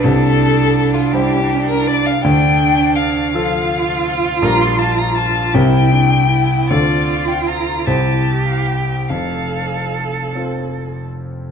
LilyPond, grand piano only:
\new Staff \with { instrumentName = "Grand piano" } { \time 6/8 \key c \mixolydian \tempo 4. = 52 <c, c>4. <g e' c''>4. | <d, d>4. <f f' a'>4. | <bes,, bes, g f' bes'>4. <c, c c' e' bes'>4. | <d, d c' f' a'>4. <c, c c' e' c''>4. |
<f,, f,>4. <c' f' a'>4. | }